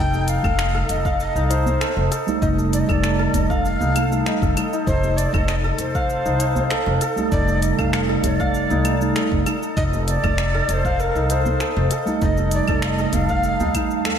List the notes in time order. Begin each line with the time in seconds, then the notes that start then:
Already playing: F1 D#4 A4 F5
0.00 G5
0.14 djembe tone, shaker
0.28 F5, closed hi-hat, shaker
0.43 F1 G3 A3 D#4 A4, kick, claves, shaker
0.59 finger snap, shaker
0.74 A4, djembe tone
0.89 F1 D#5, closed hi-hat, djembe slap, shaker
1.05 F5, kick, shaker
1.20 D#5, shaker
1.36 C2 D#4, shaker
1.50 D#4 C5, closed hi-hat, shaker
1.66 djembe bass, shaker
1.81 A4, finger snap, shaker
1.97 F1, djembe slap
2.11 A4, closed hi-hat, shaker
2.27 G3 A3 D#4, djembe tone, shaker
2.42 F1 D#4 D#5, kick, djembe slap, shaker
2.58 djembe tone, shaker
2.73 D5, closed hi-hat, shaker
2.80 D#5
2.87 F1 G3 A3 D#4 A4 D#5, kick, claves, shaker
2.91 D5
3.04 finger snap, shaker
3.19 A4, djembe tone
3.34 F1 D#5, closed hi-hat, djembe slap, djembe bass, shaker
3.50 F5, kick, shaker
3.64 F5, shaker
3.80 C2 D#4, djembe tone, djembe bass, shaker
3.95 G3 A3 D#4 A4, closed hi-hat, claves, shaker
4.11 G3 A3 D#4, shaker
4.26 D#4, finger snap, djembe tone, shaker
4.42 F1 A4, kick, shaker
4.56 G3 A3 D#4 D#5, closed hi-hat, claves, shaker
4.73 D#4, shaker
4.87 F1 D#4 C5, kick, djembe slap, shaker
5.03 djembe tone, shaker
5.18 D5, closed hi-hat, shaker
5.33 F1 G3 A3 D#4 A4 D#5, kick, claves, shaker
5.48 D#5, finger snap, shaker
5.64 A4, djembe tone
5.78 F1 C5, closed hi-hat, djembe slap, shaker
5.95 F5, kick, shaker
6.10 shaker
6.26 C2 D#4, shaker
6.40 D#4, closed hi-hat, shaker
6.56 djembe bass, shaker
6.70 A4, finger snap, shaker
6.86 F1, djembe slap
7.01 A4, closed hi-hat, shaker
7.16 G3 A3 D#4, djembe tone, shaker
7.32 F1 D#4 D5, kick, djembe slap, shaker
7.48 djembe tone, shaker
7.62 D#5, closed hi-hat, shaker
7.77 F1 G3 A3 D#4 A4 F5, kick, claves, shaker
7.93 F5, finger snap, shaker
8.09 A4, djembe tone
8.23 F1 D5, closed hi-hat, djembe slap, djembe bass, shaker
8.40 F5, kick, shaker
8.54 shaker
8.70 C2 D#4, djembe tone, djembe bass, shaker
8.84 G3 A3 D#4, closed hi-hat, claves, shaker
9.00 G3 A3 D#4, shaker
9.16 A4, finger snap, djembe tone, shaker
9.32 F1, kick
9.46 G3 A3 D#4 A4, closed hi-hat, claves, shaker
9.63 shaker
9.77 F1 D#4 D#5, kick, djembe slap, shaker
9.93 djembe tone, shaker
10.08 D5 D#5, closed hi-hat, shaker
10.23 F1 G3 A3 D#4 A4, kick, claves, shaker
10.38 finger snap, shaker
10.54 A4, djembe tone
10.68 F1 D5, closed hi-hat, djembe slap, shaker
10.74 C5
10.85 F5, kick, shaker
11.00 A#4, shaker
11.15 C2 D#4, shaker
11.30 D#4 C5, closed hi-hat, shaker
11.46 djembe bass, shaker
11.60 A4, finger snap, shaker
11.77 F1, djembe slap
11.91 A4, closed hi-hat, shaker
12.06 G3 A3 D#4, djembe tone, shaker
12.22 F1 D#4 D#5, kick, djembe slap, shaker
12.37 djembe tone, shaker
12.51 D5, closed hi-hat, shaker
12.66 F1 G3 A3 A4, kick, claves, shaker
12.71 D#4
12.82 F5, finger snap, shaker
12.88 D#5
12.98 A4, djembe tone, shaker
13.13 F1 F5, closed hi-hat, djembe slap, djembe bass, shaker
13.29 F5, kick, shaker
13.44 shaker
13.60 D#2 D#4, djembe tone, djembe bass, shaker
13.73 G3 A3 D#4, kick, closed hi-hat, claves, shaker
13.91 shaker
14.05 A4, finger snap, djembe tone, shaker